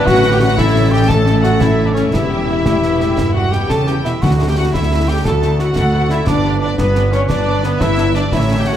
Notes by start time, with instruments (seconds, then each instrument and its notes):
Already playing: clarinet B4
0.06 double bass section A1, cello section A2, harp A2, violin section C#4 F#5, cor anglais F#4, french horn section F#4, viola section F#4, concert bass drum, snare
0.24 harp A3, violin section A3 E4
0.31 cor anglais G4, french horn section G4, viola section G4, violin section G5
0.40 harp C#4, violin section C#4 F#5, french horn section F#4, cor anglais F#4, viola section F#4
0.56 violin section A3 E4 E5, french horn section E4, cor anglais E4, harp E4, viola section E4, clarinet A4, concert bass drum, snare
0.75 harp C#4, violin section C#4
0.91 harp A3, violin section A3 E4 G5, french horn section G4, cor anglais G4, viola section G4
1.08 harp E3, violin section C#4 A5, french horn section A4, cor anglais A4, viola section A4, concert bass drum, snare
1.26 harp A3, violin section A3 E4, snare
1.42 harp C#4, violin section C#4 F#5, french horn section F#4, cor anglais F#4, viola section F#4, snare
1.60 violin section A3 E4 E5, french horn section E4, cor anglais E4, viola section E4, harp E4, concert bass drum, snare
1.78 harp C#4, violin section C#4
1.86 cor anglais D4, french horn section D4, viola section D4, violin section D5
1.93 harp A3, violin section A3 E4 C#5, cor anglais C#4, french horn section C#4, viola section C#4, snare
2.11 double bass section E1, cello section E2, harp E3, violin section B3 E4 E5, french horn section E4, viola section E4, cor anglais E4, clarinet G4, concert bass drum, snare
2.30 violin section G3 G4, harp B3
2.48 violin section B3 E4, harp E4
2.66 cello section A2, violin section G3 G4, concert bass drum, snare
2.82 violin section B3 E4, harp E4, snare
2.93 cello section B2
3.01 cello section A2, violin section G3 G4, harp B3, snare
3.18 cello section G2, harp G3, violin section B3 E4, concert bass drum, snare
3.34 violin section G3 G4 F#5, harp B3, cor anglais F#4, viola section F#4, french horn section F#4
3.52 cello section B2, violin section B3 E4 G5, harp E4, cor anglais G4, viola section G4, french horn section G4, snare
3.69 cello section C#3, violin section G3 G4 A5, harp G4, cor anglais A4, viola section A4, french horn section A4, concert bass drum, snare
3.87 violin section B3 E4 G5, harp E4, cor anglais G4, viola section G4, french horn section G4, snare
4.04 cello section B2, violin section G3 G4 E5, harp B3, viola section E4, cor anglais E4, french horn section E4, snare
4.21 cello section D2, double bass section D2, timpani D3, harp D3, violin section A3 E4 F#5, cor anglais F#4, viola section F#4, french horn section F#4, concert bass drum, snare, crash
4.39 violin section A3 E4, harp D4
4.48 french horn section G4, cor anglais G4, viola section G4, violin section G5
4.56 violin section A3 E4 F#5, harp E4, cor anglais F#4, french horn section F#4, viola section F#4
4.73 cello section D2, double bass section D2, violin section A3 E4 E5, viola section E4, cor anglais E4, french horn section E4, harp A4, concert bass drum, snare
4.91 violin section A3 E4, harp E4
5.08 violin section A3 E4 G5, harp D4, viola section G4, cor anglais G4, french horn section G4
5.25 cello section D2, double bass section D2, harp A3, violin section A3 E4 A5, clarinet F#4, cor anglais A4, viola section A4, french horn section A4, concert bass drum, snare
5.42 violin section A3 E4, harp D4, snare
5.59 violin section A3 E4 F#5, harp E4, cor anglais F#4, viola section F#4, french horn section F#4, snare
5.76 cello section D2, double bass section D2, violin section A3 E4, harp A4, clarinet A4, concert bass drum, snare
5.93 violin section A3 E4, harp E4
6.10 violin section A3 E4 E5, harp D4, viola section E4, cor anglais E4, french horn section E4, snare
6.27 double bass section G1, harp G2, cello section G2, violin section B3 D4 D5, viola section D4, cor anglais D4, french horn section D4, clarinet B4, concert bass drum, snare
6.44 harp B3, violin section B3 D4
6.61 violin section B3 D4 D5, viola section D4, cor anglais D4, harp D4, french horn section D4
6.78 double bass section G1, cello section G2, cor anglais B3, french horn section B3, violin section B3 D4 B4, viola section B3, harp G4, concert bass drum, snare
6.95 violin section B3 D4, harp D4, snare
7.12 harp B3, violin section B3 D4 C#5, cor anglais C#4, viola section C#4, french horn section C#4, snare
7.29 double bass section G1, cello section G2, harp D3, violin section B3 D4 D5, cor anglais D4, viola section D4, french horn section D4, concert bass drum, snare
7.47 harp B3, violin section B3 D4
7.64 french horn section B3, cor anglais B3, violin section B3 D4 B4, viola section B3, harp D4, snare
7.80 double bass section G1, cello section G2, violin section B3 D4 E5, french horn section E4, viola section E4, cor anglais E4, harp G4, concert bass drum, snare
7.98 violin section B3 D4, harp D4, snare
8.15 harp B3, violin section B3 D4 D5, cor anglais D4, viola section D4, french horn section D4, snare
8.32 double bass section A1, harp A2, cello section A2, violin section A3 C#4 E5, french horn section E4, viola section E4, cor anglais E4, clarinet C#5, concert bass drum, snare
8.49 harp A3, violin section A3 C#4
8.57 french horn section G4, viola section G4, cor anglais G4, violin section G5
8.66 violin section A3 C#4 F#5, harp C#4, french horn section F#4, viola section F#4, cor anglais F#4